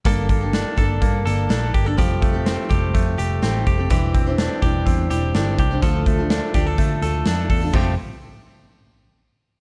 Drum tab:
CC |--------|--------|--------|--------|
HH |xxxxxxxx|xxxxxxxx|xxxxxxxx|xxxxxxxo|
SD |--o---o-|--o---o-|--o---o-|--o---o-|
BD |oo-oo--o|oo-oo--o|oo-oo--o|oo-oo--o|

CC |x-------|
HH |--------|
SD |--------|
BD |o-------|